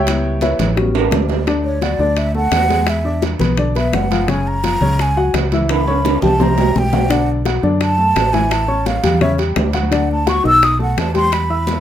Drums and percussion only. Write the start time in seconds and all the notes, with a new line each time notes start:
0.07 high bongo, high conga, high timbale
0.25 high conga
0.41 high bongo, high conga, high timbale, low timbale
0.59 high bongo, high conga, low conga, high timbale
0.77 high bongo, high conga
0.95 high bongo, high timbale
1.11 high bongo, low bongo, high conga, low timbale
1.29 high bongo, high conga, low timbale
1.46 high bongo, high conga, high timbale
1.64 high conga
1.81 high bongo, high conga, high timbale, low timbale
1.99 high bongo, high conga
2.17 high bongo, high conga, high timbale
2.34 high bongo, high conga
2.52 high bongo, low bongo, high conga, high timbale, low timbale
2.69 high bongo, high conga, high timbale
2.87 high bongo, high conga, high timbale
3.05 high conga
3.22 high bongo, high conga, high timbale, low timbale
3.39 high bongo, high conga, low conga, high timbale
3.58 high bongo, high conga
3.75 high bongo, high conga, high timbale
3.93 high bongo, low bongo, high conga, low timbale
4.11 high bongo, high conga, high timbale
4.28 high bongo, high conga, high timbale
4.47 high conga
4.64 high bongo, high conga, high timbale, low timbale
4.82 high bongo, high conga
4.99 high bongo, high conga, high timbale
5.17 high bongo, high conga
5.34 high bongo, low bongo, high conga, high timbale, low timbale
5.52 high bongo, high conga, high timbale
5.69 high bongo, high conga, high timbale
5.87 high conga, high timbale
6.05 high bongo, high conga, high timbale
6.22 high bongo, high conga, low conga, low timbale
6.40 high bongo, high conga, low conga, low timbale
6.58 high bongo, high conga, low timbale
6.76 low bongo, high conga
6.93 low bongo, high conga, low timbale
7.10 high bongo, high conga, high timbale
7.28 high conga
7.45 high bongo, high conga, high timbale, low timbale
7.63 high bongo, high conga
7.81 high bongo, high conga, high timbale
7.98 high bongo, high conga
8.16 high bongo, low bongo, high timbale, low timbale
8.34 high bongo, high conga, high timbale
8.51 high bongo, high conga, high timbale
8.69 high conga
8.86 high bongo, high conga, high timbale, low timbale
9.04 high bongo, high conga, low conga, high timbale
9.21 high bongo
9.38 high bongo, high conga, high timbale
9.56 high bongo, low bongo, high conga, low timbale
9.73 high bongo, high conga, high timbale
9.92 high bongo, high conga, high timbale
10.10 high conga
10.27 high bongo, high conga, high timbale, low timbale
10.44 high bongo, high conga
10.62 high bongo, high conga, high timbale
10.80 high bongo, high conga
10.98 high bongo, low bongo, high timbale, low timbale
11.15 high bongo, high conga, high timbale
11.32 high bongo, high conga, high timbale
11.51 high conga
11.67 high bongo, high conga, high timbale, low timbale